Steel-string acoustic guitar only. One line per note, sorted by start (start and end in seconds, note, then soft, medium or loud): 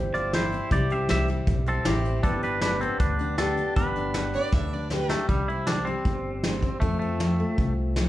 0.00 0.30 G2 medium
0.00 0.72 G3 medium
0.00 0.14 C4 medium
0.00 0.33 E4 medium
0.15 0.53 C4 medium
0.33 0.68 E3 medium
0.33 1.85 E4 medium
0.54 0.70 C4 medium
0.72 1.06 C3 medium
0.72 1.29 G3 medium
0.92 1.66 C4 medium
1.10 1.44 E3 medium
1.30 2.25 G3 medium
1.48 1.82 G2 medium
1.67 2.05 C4 medium
1.86 2.20 E3 medium
1.86 2.24 E4 medium
2.06 2.22 C4 medium
2.25 2.59 G2 medium
2.25 2.82 B3 medium
2.44 3.20 D4 medium
2.62 2.96 D3 medium
2.83 3.75 B3 medium
3.01 3.35 G2 medium
3.21 3.57 D4 medium
3.39 3.73 D3 medium
3.39 4.93 G4 medium
3.58 3.75 D4 medium
3.77 4.11 G2 medium
3.77 4.34 B3 medium
3.97 4.72 D4 medium
4.16 4.50 D3 medium
4.36 5.28 B3 medium
4.54 4.88 G2 medium
4.74 5.10 D4 medium
4.92 5.26 D3 medium
4.92 5.28 G4 medium
5.12 5.28 D4 medium
5.30 5.64 C3 medium
5.30 5.86 G3 medium
5.50 6.62 C4 medium
5.67 6.01 E3 medium
5.87 6.82 G3 medium
6.06 6.40 G2 medium
6.44 6.78 E3 medium
6.63 6.80 C4 medium
6.81 7.16 F2 medium
6.81 7.20 F3 medium
6.81 7.39 A3 medium
6.81 7.00 C4 medium
6.81 8.09 F4 medium
7.02 8.09 C4 medium
7.20 7.54 F3 medium
7.40 8.09 A3 soft
7.59 7.93 C3 medium
7.97 8.09 F3 medium